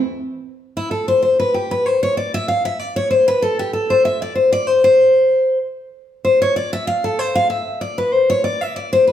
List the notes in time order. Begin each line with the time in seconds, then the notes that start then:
0.77 E4
0.91 A4
1.08 C5
1.22 C5
1.40 B4
1.54 G4
1.71 B4
1.86 C5
2.03 C#5
2.17 D5
2.34 E5
2.48 F5
2.65 E5
2.79 D5
2.96 C#5
3.11 C5
3.28 B4
3.42 A4
3.59 G4
3.73 A4
3.90 C5
4.05 E5
4.22 D5
4.35 C5
4.52 D5
4.67 C5
4.84 C5
6.25 C5
6.42 C#5
6.56 D5
6.73 E5
6.87 F5
7.04 A4
7.19 C5
7.35 F5
7.50 E5
7.81 D5
7.98 B4
8.13 C5
8.30 C#5
8.44 D5
8.61 E5
8.76 D5
8.93 C5
9.07 B4